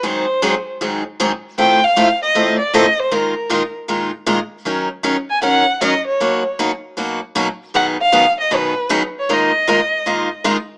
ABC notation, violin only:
X:1
M:4/4
L:1/8
Q:"Swing" 1/4=156
K:Abdor
V:1 name="Violin"
=c3 z4 z | =g f2 e2 =d e =c | B3 z4 z | z3 a g2 e d- |
d2 z6 | g f2 e c2 z d | e6 z2 |]